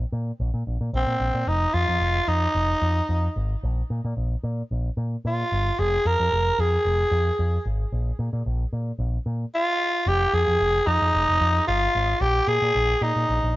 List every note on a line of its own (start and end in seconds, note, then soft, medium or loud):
0.12 0.31 A#2 medium
0.40 0.49 A#1 loud
0.54 0.62 A#2 medium
0.67 0.76 A#1 medium
0.81 0.89 A#2 medium
0.93 1.03 A#1 loud
0.93 1.50 C4 medium
1.07 1.16 A#2 medium
1.20 1.30 A#1 medium
1.34 1.43 A#2 medium
1.47 1.65 F1 loud
1.47 1.75 D#4 medium
1.74 1.84 F2 loud
1.74 2.30 F4 loud
1.88 1.97 F2 loud
2.00 2.18 F1 medium
2.28 2.46 F2 loud
2.28 3.36 D#4 medium
2.55 2.73 F1 loud
2.82 3.00 F2 loud
3.09 3.27 F2 medium
3.36 3.54 G#1 medium
3.63 3.81 A#1 loud
3.90 3.99 A#2 loud
4.05 4.13 A#2 loud
4.17 4.35 A#1 medium
4.43 4.61 A#2 medium
4.71 4.89 A#1 medium
4.97 5.15 A#2 medium
5.25 5.43 A#2 medium
5.25 5.81 F4 medium
5.52 5.70 G1 medium
5.79 5.96 F1 loud
5.79 6.08 G#4 loud
6.05 6.15 F2 loud
6.05 6.62 A#4 loud
6.20 6.28 F2 loud
6.32 6.50 F1 loud
6.59 6.76 F2 loud
6.59 7.66 G#4 medium
6.85 7.03 F1 medium
7.11 7.30 F2 loud
7.39 7.57 F2 medium
7.65 7.83 G#1 medium
7.92 8.10 A#1 loud
8.19 8.29 A#2 loud
8.33 8.42 A#2 loud
8.46 8.64 A#1 loud
8.73 8.91 A#2 loud
8.99 9.17 A#1 loud
9.26 9.44 A#2 loud
9.55 10.10 F4 loud
10.06 10.25 F1 loud
10.06 10.35 G4 loud
10.33 10.43 F2 loud
10.33 10.88 G#4 loud
10.48 10.56 F2 medium
10.60 10.78 F1 loud
10.87 10.97 F2 loud
10.87 11.67 D#4 loud
11.01 11.10 F2 medium
11.14 11.24 F1 loud
11.29 11.37 F1 loud
11.41 11.59 F2 medium
11.67 11.86 G1 loud
11.67 12.22 F4 loud
11.95 12.13 G#1 medium
12.21 12.39 A#1 loud
12.21 12.49 G4 loud
12.48 12.57 A#2 loud
12.48 13.04 G#4 loud
12.62 12.71 A#2 loud
12.75 12.93 A#1 loud
13.01 13.11 A#2 loud
13.01 13.56 D#4 medium
13.16 13.24 A#2 medium
13.29 13.38 A#1 loud
13.43 13.56 A#1 medium